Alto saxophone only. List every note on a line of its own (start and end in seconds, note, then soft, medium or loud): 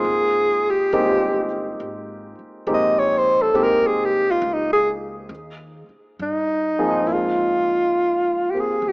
0.00 0.72 G#4 medium
0.70 1.54 G4 medium
2.74 3.01 D#5 medium
2.99 3.19 C#5 medium
3.18 3.44 C5 medium
3.42 3.65 A4 medium
3.64 3.88 A#4 medium
3.87 4.06 G#4 medium
4.05 4.32 G4 medium
4.31 4.55 F4 medium
4.54 4.72 D#4 medium
4.73 4.90 G#4 medium
6.22 7.09 D#4 medium
7.08 7.14 E4 medium
7.13 8.52 F4 medium
8.50 8.61 G4 medium
8.60 8.90 G#4 medium
8.88 8.92 G4 medium